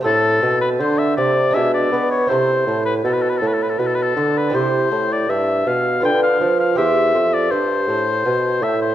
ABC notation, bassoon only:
X:1
M:3/4
L:1/8
Q:1/4=80
K:Am
V:1 name="Bassoon" clef=bass
A,, B,, D, C, B,, B, | C, A,, B,, A,, B,, D, | C, A,, G,, B,, D, F, | E,, F,, G,, A,, B,, A,, |]